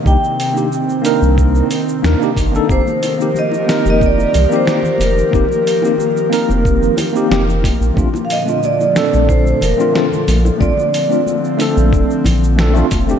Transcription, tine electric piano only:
X:1
M:4/4
L:1/16
Q:1/4=91
K:Fmix
V:1 name="Tine electric piano"
[B,DEG] z2 [B,DEG] z2 [B,DEB]4 z2 [B,DEB] [B,DEG] z [B,DEA] | [B,CEG] z2 [B,CEG] z2 [B,CEB]4 z [B,CEG] [B,CEG] z3 | [B,CEG] z2 [B,CEG] z2 [B,CEB]4 z [B,CEG] [B,CEG] z3 | [A,CDF] z2 [A,CDF] z2 [A,CDA]4 z [A,CDF] [A,CDF] z3 |
[A,CDF] z2 [A,CDF] z2 [A,CDA]4 z2 [A,CDA] [A,CDF] z [A,CDG] |]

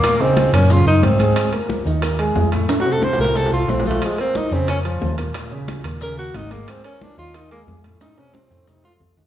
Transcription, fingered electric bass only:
X:1
M:4/4
L:1/8
Q:1/4=181
K:Abmix
V:1 name="Fingered electric bass" clef=bass
z3 G,,2 G,, A,,2 | z3 E,,3 F,,2 | z3 C,,2 C,, B,,,2 | z3 F,,3 E,,2 |
z3 E,,3 A,,,2 | z3 E,,3 F,,2 | z3 F,,3 F,,2 |]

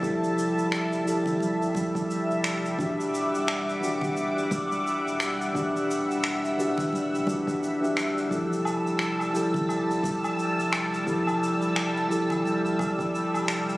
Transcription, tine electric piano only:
X:1
M:4/4
L:1/16
Q:"Swing 16ths" 1/4=87
K:Flyd
V:1 name="Tine electric piano"
[F,EGA]6 [F,EGA]8- [F,EGA]2 | [E,D^FG]6 [E,DFG]8- [E,DFG]2 | [E,D^FG]6 [E,DFG]4 [E,DFG]3 [E,DFG] z2 | [F,EGA]6 [F,EGA]8- [F,EGA]2 |
[F,EGA]6 [F,EGA]8- [F,EGA]2 |]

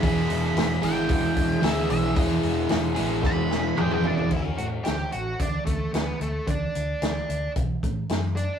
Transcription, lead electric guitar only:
X:1
M:4/4
L:1/16
Q:1/4=112
K:Dlyd
V:1 name="Lead electric guitar"
b6 =g2 g4 e2 e2 | z8 b4 =g g [Da]2 | E2 F2 =G2 F2 D2 A,2 B,2 A,2 | D8 z6 D2 |]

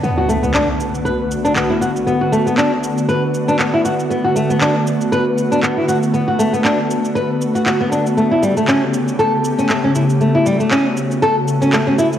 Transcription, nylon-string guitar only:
X:1
M:4/4
L:1/16
Q:"Swing 16ths" 1/4=118
K:Bm
V:1 name="Nylon-string guitar"
B, F A, B, D z3 B z2 D B, E F z | B, F A, B, D z3 B z2 D B, E F z | B, F A, B, D z3 B z2 D B, E F z | B, F A, B, D z3 B z2 F F B, D z |
A, E G, A, C z3 A z2 C A, C E z | A, E G, A, C z3 A z2 C A, C E z |]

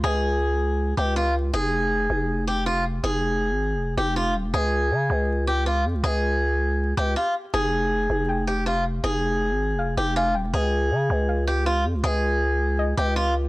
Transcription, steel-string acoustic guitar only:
X:1
M:4/4
L:1/8
Q:1/4=160
K:Fm
V:1 name="Steel-string acoustic guitar"
A4- A G F z | A4- A G F z | A4- A G F z | A4- A G F z |
A4- A G F z | A4- A G F z | A4- A G F z | A4- A G F z |
A4- A G F z |]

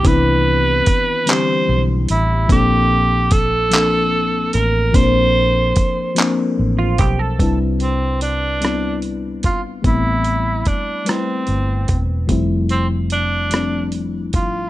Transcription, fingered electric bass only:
X:1
M:6/8
L:1/8
Q:3/8=49
K:C
V:1 name="Fingered electric bass" clef=bass
C,,2 z2 B,,, A,,, | _B,,,4- B,,, A,,, | _B,,,2 z2 A,,, =B,,, | C,,4- C,, _A,,, |
A,,,2 z2 G,,, E,,, | F,,,4- F,,, _A,,, |]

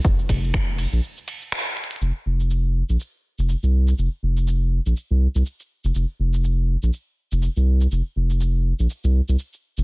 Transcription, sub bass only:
X:1
M:4/4
L:1/16
Q:"Swing 16ths" 1/4=122
K:Cphr
V:1 name="Sub bass" clef=bass
F,,, z F,,,4- F,,, B,,, z8 | F,,, z F,,,4- F,,, B,,, z3 F,,, z C,,3 | F,,, z F,,,4- F,,, B,,, z C,, z C,, z3 F,,, | F,,, z F,,,4- F,,, B,,, z3 F,,, z C,,3 |
F,,, z F,,,4- F,,, B,,, z C,, z C,, z3 F,,, |]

